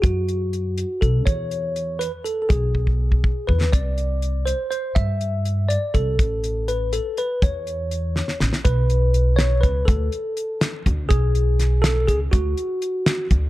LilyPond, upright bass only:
\new Staff \with { instrumentName = "Upright bass" } { \clef bass \time 5/8 \key b \dorian \tempo 4 = 122 fis,2 b,,8 | e,2 r8 | b,,2 e,8 | c,2 r8 |
g,2 c,8 | a,,2 r8 | e,2 a,,16 r16 | b,,2 cis,8 |
d,8 r4. d,8 | b,,2 cis,8 | d,8 r4. d,8 | }